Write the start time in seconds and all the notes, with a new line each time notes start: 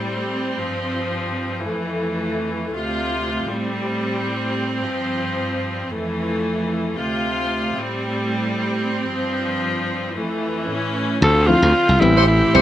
Already playing: A2 G3 C4
0.60 G2 F3
1.67 F2 E3 A3
2.72 D2 C3 F4
3.50 A2 G3 C4
4.83 G2 F3
5.90 F2 E3 A3
6.95 D2 C3 F4
7.75 A2 G3 C4
9.07 G2 F3
10.15 F2 E3 A3
10.70 A2 C#4
11.21 D2 D3 C4 F4 A4
11.47 F3 C4 E4 F4
11.62 D2 C4 E4
11.89 C2
12.01 A1 G3 A3 B3 C4 E4 G4
12.16 G4 A4 C5
12.27 B3 C4 E4
12.42 A2 E3
12.54 C2 G3 B3 C4 G4 A4 C5